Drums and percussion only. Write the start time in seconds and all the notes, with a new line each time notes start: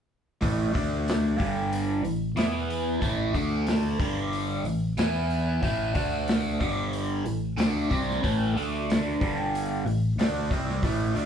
0.42 kick, open hi-hat
0.75 kick, open hi-hat
1.08 snare, open hi-hat
1.40 kick, open hi-hat
1.73 open hi-hat
2.05 open hi-hat
2.37 snare, open hi-hat
2.70 open hi-hat
3.02 kick, open hi-hat
3.34 kick, open hi-hat
3.67 snare, open hi-hat
4.00 kick, open hi-hat
4.33 open hi-hat
4.65 open hi-hat
4.97 snare, open hi-hat
5.30 open hi-hat
5.63 kick, open hi-hat
5.95 kick, open hi-hat
6.28 snare, open hi-hat
6.61 kick, open hi-hat
6.93 open hi-hat
7.26 open hi-hat
7.58 snare, open hi-hat
7.91 kick, open hi-hat
8.10 snare
8.24 kick, open hi-hat
8.57 open hi-hat
8.90 snare, open hi-hat
9.21 kick, open hi-hat
9.55 open hi-hat
9.87 open hi-hat
10.19 snare, open hi-hat
10.51 kick, open hi-hat
10.69 snare
10.83 kick, open hi-hat
11.16 open hi-hat